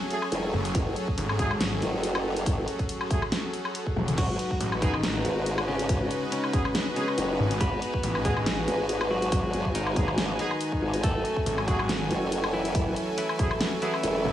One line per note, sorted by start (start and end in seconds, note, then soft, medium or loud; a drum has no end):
0.00 4.14 F#3 medium
0.00 4.18 A3 medium
0.00 4.14 C#4 medium
0.00 14.32 F#4 medium
0.00 4.14 G#4 medium
0.00 4.14 A4 medium
0.00 4.86 C#5 medium
0.00 1.81 G#5 medium
0.10 0.21 F#3 loud
0.10 0.21 A3 medium
0.10 0.21 G#4 loud
0.10 closed hi-hat soft
0.22 low woodblock medium
0.32 0.52 E1 loud
0.32 closed hi-hat medium
0.53 0.73 F#1 loud
0.65 closed hi-hat medium
0.75 0.95 F#1 loud
0.75 kick loud
0.75 closed hi-hat medium
0.96 closed hi-hat medium
1.08 kick medium
1.18 1.80 G#1 loud
1.18 closed hi-hat medium
1.29 low woodblock medium
1.39 1.49 F#3 medium
1.39 1.49 A3 medium
1.39 1.49 G#4 loud
1.39 kick loud
1.39 closed hi-hat medium
1.51 low woodblock medium
1.61 snare loud
1.61 closed hi-hat medium
1.82 2.45 F#1 loud
1.82 closed hi-hat medium
2.03 closed hi-hat medium
2.15 low woodblock medium
2.36 closed hi-hat medium
2.46 2.66 F#1 loud
2.46 kick loud
2.46 closed hi-hat medium
2.68 closed hi-hat medium
2.79 kick medium
2.79 closed hi-hat soft
2.89 closed hi-hat medium
3.01 low woodblock medium
3.11 3.21 F#3 medium
3.11 3.21 A3 medium
3.11 3.21 G#4 medium
3.11 kick loud
3.11 closed hi-hat medium
3.22 low woodblock medium
3.32 snare loud
3.32 closed hi-hat medium
3.53 closed hi-hat medium
3.65 low woodblock medium
3.75 closed hi-hat medium
3.87 kick medium
3.96 4.16 E1 loud
3.96 high tom medium
4.08 closed hi-hat medium
4.08 mid tom medium
4.18 4.38 G#1 loud
4.18 4.74 F#3 medium
4.18 10.99 G#3 medium
4.18 10.99 D#4 medium
4.18 7.57 F#4 medium
4.18 4.74 F#4 medium
4.18 10.99 B4 medium
4.18 kick loud
4.18 closed hi-hat medium
4.18 crash medium
4.39 closed hi-hat medium
4.51 11.95 B4 medium
4.51 kick medium
4.60 5.23 A1 medium
4.60 11.89 D#5 medium
4.60 closed hi-hat medium
4.72 low woodblock medium
4.82 5.60 D#3 medium
4.82 4.92 F#3 loud
4.82 4.92 B3 medium
4.82 5.60 D#4 medium
4.82 4.92 G#4 loud
4.82 kick loud
4.82 closed hi-hat medium
4.94 low woodblock soft
5.03 snare loud
5.03 closed hi-hat medium
5.25 5.88 G#1 medium
5.25 closed hi-hat medium
5.45 14.32 G#5 medium
5.45 closed hi-hat medium
5.58 low woodblock medium
5.67 6.24 C#3 medium
5.67 6.24 C#4 medium
5.79 closed hi-hat medium
5.89 6.09 G#1 loud
5.89 kick loud
5.89 closed hi-hat medium
6.11 closed hi-hat medium
6.32 6.88 C#3 medium
6.32 6.88 C#4 medium
6.32 closed hi-hat medium
6.44 low woodblock medium
6.53 6.64 F#3 medium
6.53 6.64 B3 medium
6.53 6.64 G#4 medium
6.53 kick loud
6.53 closed hi-hat medium
6.65 low woodblock medium
6.75 snare loud
6.75 closed hi-hat medium
6.96 7.53 C#3 medium
6.96 7.06 F#3 loud
6.96 7.06 B3 medium
6.96 7.53 C#4 medium
6.96 7.06 G#4 loud
6.96 closed hi-hat medium
7.08 low woodblock medium
7.18 7.38 F#1 loud
7.18 closed hi-hat medium
7.39 7.59 G#1 loud
7.51 closed hi-hat medium
7.60 7.80 G#1 loud
7.60 8.17 B3 medium
7.60 8.17 B4 medium
7.60 14.32 G#5 medium
7.60 kick loud
7.60 closed hi-hat medium
7.82 closed hi-hat medium
7.94 kick medium
8.03 8.66 A1 medium
8.03 closed hi-hat medium
8.15 low woodblock medium
8.25 8.35 F#3 medium
8.25 9.03 G#3 medium
8.25 8.35 B3 medium
8.25 8.35 G#4 loud
8.25 9.03 G#4 medium
8.25 kick loud
8.25 closed hi-hat medium
8.37 low woodblock soft
8.46 snare loud
8.46 closed hi-hat medium
8.68 9.30 G#1 medium
8.68 closed hi-hat medium
8.89 closed hi-hat medium
9.01 low woodblock medium
9.11 9.67 F#3 medium
9.11 9.67 F#4 medium
9.22 closed hi-hat medium
9.32 9.52 G#1 loud
9.32 kick loud
9.32 closed hi-hat medium
9.53 10.38 G#1 loud
9.53 closed hi-hat medium
9.65 kick medium
9.75 10.31 D#3 medium
9.75 10.31 D#4 medium
9.75 closed hi-hat medium
9.87 low woodblock medium
9.96 10.06 F#3 medium
9.96 10.06 B3 medium
9.96 10.06 G#4 medium
9.96 kick loud
9.96 closed hi-hat medium
10.08 low woodblock soft
10.18 snare loud
10.18 closed hi-hat medium
10.39 10.96 D#3 medium
10.39 10.49 F#3 loud
10.39 10.49 B3 medium
10.39 10.96 D#4 medium
10.39 10.49 G#4 loud
10.39 closed hi-hat medium
10.51 low woodblock soft
10.61 closed hi-hat medium
10.72 kick medium
10.82 11.02 G#1 medium
10.94 closed hi-hat medium
11.03 11.23 F#1 loud
11.03 14.32 F#3 medium
11.03 11.60 A3 medium
11.03 14.32 C#4 medium
11.03 14.32 A4 medium
11.03 11.60 A4 medium
11.03 kick loud
11.03 closed hi-hat medium
11.25 closed hi-hat medium
11.34 14.32 C#5 medium
11.34 kick medium
11.46 12.09 G#1 loud
11.46 14.32 A3 medium
11.46 closed hi-hat medium
11.58 low woodblock medium
11.68 12.46 F#3 medium
11.68 11.78 F#3 loud
11.68 11.78 A3 medium
11.68 12.46 F#4 medium
11.68 11.78 G#4 loud
11.68 kick loud
11.68 closed hi-hat medium
11.79 low woodblock medium
11.89 snare loud
11.89 closed hi-hat medium
12.10 12.73 F#1 loud
12.10 closed hi-hat medium
12.32 closed hi-hat medium
12.44 low woodblock medium
12.53 13.10 E3 medium
12.53 13.10 E4 medium
12.65 closed hi-hat medium
12.75 12.95 F#1 loud
12.75 kick loud
12.75 closed hi-hat medium
12.96 closed hi-hat medium
13.18 13.74 E3 medium
13.18 13.74 E4 medium
13.18 closed hi-hat medium
13.29 low woodblock medium
13.39 13.49 F#3 medium
13.39 13.49 A3 medium
13.39 13.49 G#4 medium
13.39 kick loud
13.39 closed hi-hat soft
13.51 low woodblock medium
13.61 snare loud
13.61 closed hi-hat medium
13.82 14.32 E3 medium
13.82 13.92 F#3 loud
13.82 13.92 A3 medium
13.82 14.32 E4 medium
13.82 13.92 G#4 loud
13.82 closed hi-hat medium
13.94 low woodblock medium
14.03 14.23 E1 loud
14.03 closed hi-hat medium
14.25 14.32 F#1 loud